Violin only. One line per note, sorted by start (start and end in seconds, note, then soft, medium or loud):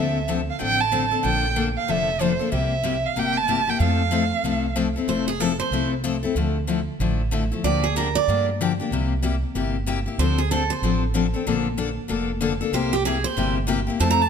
0.00 0.30 E5 medium
0.50 0.61 F5 medium
0.62 0.82 G5 loud
0.80 1.12 A5 medium
1.25 1.54 G5 medium
1.77 1.91 F5 medium
1.90 2.23 E5 loud
2.21 2.53 C5 medium
2.53 3.07 E5 medium
3.06 3.21 F5 medium
3.19 3.39 G5 medium
3.37 3.71 A5 loud
3.70 3.81 G5 medium
3.82 4.73 F5 medium